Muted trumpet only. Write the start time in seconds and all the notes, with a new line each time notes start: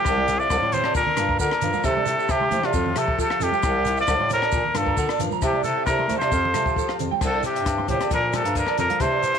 Already playing: G4
0.39 D5
0.73 C5
0.96 A#4
1.40 A#4
1.85 A4
2.31 G4
2.66 F4
2.99 A4
3.21 A4
3.43 G4
4.01 D5
4.33 A#4
4.78 A4
5.45 G4
5.63 A4
5.86 A#4
6.19 C5
7.26 A4
7.46 G4
7.90 G4
8.14 A#4
8.36 A4
8.58 A#4
8.80 A#4
9.01 C5